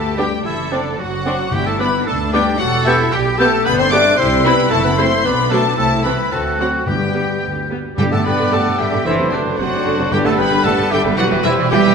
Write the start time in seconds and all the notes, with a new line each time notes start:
Already playing: D2 A3 G4 A4 A5
0.16 G3 B3 D4 G4 G5 D6
0.44 F#1 E3 E4 A4 E5
0.71 D3 C4 D4 D5 D6
0.98 F#1 F#3 F#4 F#5
1.25 C4 D4 D6
1.51 G1 G2 G3 E4 G4 G5
1.66 A3 A4 A5
1.79 B3 D4 B4 B5 D6
2.06 D2 A3 D4 A4 A5
2.32 G3 B3 D4 G4 G5 D6
2.59 E1 F#3 F#4 A4 F#5
2.85 E3 B3 E4 G4 E5 G6
3.12 B1 G3 G4 G5
3.38 A3 B3 G4 A4 A5 G6
3.65 G1 B3 D4 B4 B5 G6
3.78 C4 C5 C6
3.91 A3 B3 D4 G4 D5 D6 F#6
4.17 C2 G3 C4 E4 C5 C6 E6
4.44 B3 C4 E4 B4 B5
4.70 F#1 A3 A4 A5 E6
4.84 B3 B4 B5
4.97 A3 C4 E4 C5 C6
5.24 B1 B3 D4 B4 B5 D6
5.50 F#3 A3 D4 A4 A5
5.77 C2 A3 C4 E4 A4 A5 E6
6.04 E3 B3 C4 B4 B5
6.31 D2 A3 C4 F#4 A4 A5 F#6
6.57 F#3 C4 F#4 F#5
6.61 F#5
6.86 G2 G3 B3 G4 G5 G6
7.14 G3 B3
7.42 D2
7.71 G3 B3
7.97 G2 D3 G3 B3 D4 G4 D5 G5
8.11 G2 D3 A3 A4 F#5 A5
8.24 G2 D3 B3 B4 G5 B5
8.38 G2 D3
8.52 G2 D3 A3 A4 F#5 A5
8.64 G2 D3
8.78 G2 D3 G3 G4 E5 G5
8.91 G2 D3
9.04 F#1 D3 E3 F#3 A3 C4 D4 E4 C5 E5
9.19 F#1 C3
9.32 F#1 C3 D3 D4 B4 D5
9.45 F#1 D3
9.58 F#1 C3 F#3 D4 F#4 C5 D5 F#5
9.72 F#1 C3
9.85 F#1 D3
9.98 F#1 C3
10.11 G1 G2 D3 G3 B3 D4 G4 B4 D5 G5
10.25 G1 D3 A3 A4 F#5 A5
10.37 G1 D3 B3 B4 G5 B5
10.52 G1 D3
10.64 G1 D3 A3 A4 F#5 A5
10.78 G1 D3
10.90 G1 D3 G3 G4 E5 G5
11.04 G1 D3
11.17 E1 E3 F#3 G3 E4 F#4 G4 B4 D5 F#5
11.31 E1 E3
11.44 E1 E3 E4 C5 E5
11.58 E1 E3
11.71 E1 E3 G3 E4 G4 B4 E5 G5
11.85 E1 E3